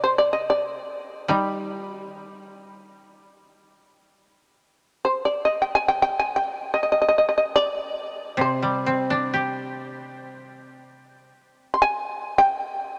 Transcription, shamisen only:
0.04 0.18 C5 medium
0.18 0.32 D5 medium
0.33 0.48 D#5 medium
0.50 1.27 D5 medium
1.29 1.64 D#4 medium
1.64 1.78 E4 medium
1.78 1.92 F4 medium
1.92 2.05 F#4 medium
2.05 3.65 G4 medium
5.05 5.25 C5 medium
5.25 5.43 D5 medium
5.45 5.60 D#5 medium
5.62 5.75 G5 medium
5.75 5.88 G#5 medium
5.88 6.01 G5 medium
6.02 6.17 G5 medium
6.19 6.35 G#5 medium
6.36 6.72 G5 medium
6.74 6.82 D#5 medium
6.83 6.91 D#5 medium
6.92 7.00 D#5 medium
7.02 7.07 D#5 medium
7.08 7.17 D#5 medium
7.18 7.27 D#5 medium
7.29 7.36 D#5 medium
7.38 7.46 D#5 medium
7.56 8.35 D5 medium
8.41 10.16 C5 medium
11.74 11.81 C6 medium
11.82 12.33 G#5 medium
12.38 12.99 G5 medium

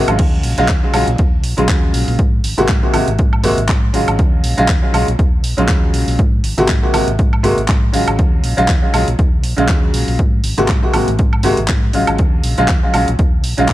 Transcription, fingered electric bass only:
0.08 0.17 G#1 loud
0.44 0.55 A#1 medium
0.58 0.66 A#1 medium
0.93 1.05 A#1 loud
1.08 1.16 A#1 loud
1.19 1.44 D#2 medium
1.44 1.55 A#1 medium
1.58 1.67 A#1 loud
1.69 1.89 D#2 loud
1.94 2.05 A#1 medium
2.08 2.17 A#1 loud
2.44 2.55 G#1 medium
2.58 2.67 G#1 medium
2.69 2.80 G#2 loud
2.94 3.05 G#1 loud
3.08 3.17 G#1 loud
3.44 3.55 G#1 loud
3.58 3.66 G#1 loud
3.94 4.05 G#1 medium
4.08 4.17 G#1 loud
4.19 4.39 D#2 loud
4.44 4.55 A#1 medium
4.58 4.67 A#1 medium
4.94 5.05 A#1 loud
5.08 5.17 A#1 loud
5.43 5.55 A#1 medium
5.58 5.66 A#1 medium
5.69 5.89 D#2 loud
5.94 6.05 A#1 medium
6.07 6.16 A#1 loud
6.19 6.39 G#2 loud
6.43 6.55 G#1 medium
6.58 6.66 G#1 medium
6.69 6.80 G#2 loud
6.93 7.05 G#1 loud
7.08 7.16 G#1 loud
7.19 7.45 G#2 medium
7.44 7.55 G#1 medium
7.57 7.66 G#1 medium
7.69 7.89 G#2 loud
7.94 8.05 G#1 medium
8.08 8.16 G#1 medium
8.19 8.39 D#2 loud
8.43 8.55 A#1 medium
8.58 8.67 A#1 medium
8.69 8.80 D#2 loud
8.94 9.05 A#1 loud
9.08 9.17 A#1 loud
9.43 9.55 A#1 loud
9.58 9.66 A#1 medium
9.94 10.05 A#1 medium
10.08 10.17 A#1 loud
10.19 10.39 G#2 loud
10.44 10.55 G#1 medium
10.58 10.67 G#1 medium
10.69 10.80 G#2 loud
10.94 11.05 G#1 loud
11.08 11.17 G#1 loud
11.44 11.55 G#1 loud
11.58 11.67 G#1 medium
11.69 11.89 G#2 loud
11.94 12.05 G#1 medium
12.08 12.17 G#1 loud
12.19 12.39 D#2 loud
12.44 12.55 A#1 medium
12.58 12.67 A#1 medium
12.94 13.05 A#1 loud
13.08 13.17 A#1 loud
13.19 13.44 D#2 medium
13.44 13.55 A#1 loud
13.58 13.67 A#1 loud
13.69 13.73 D#2 loud

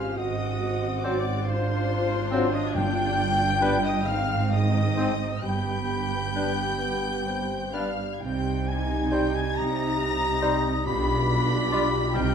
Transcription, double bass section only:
0.00 0.18 G#1 medium
0.19 2.71 G#1 medium
2.76 4.04 G1 loud
4.07 5.44 G#1 medium
5.44 7.97 G1 medium
8.22 9.41 C2 medium
9.57 10.71 C2 medium
10.87 12.01 B1 medium
12.17 12.35 C2 loud

